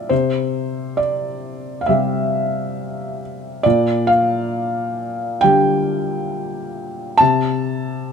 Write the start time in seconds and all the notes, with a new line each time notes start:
Already playing: D3 G3 G4 D5 E5 F5
0.09 C3 C5
0.97 D5
1.81 F5
1.86 C3 G3 G4 E5
3.63 A#2 D5
4.07 F5
5.41 D3 G3 G4 G5
7.17 C3 A5